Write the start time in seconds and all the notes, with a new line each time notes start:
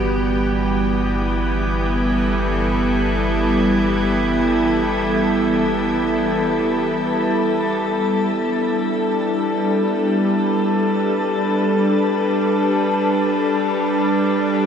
Already playing: G1 E3 G3 B3 F#4 G4
0.78 E4
1.78 A4
7.89 G3
7.94 G3
8.32 D4
9.10 B4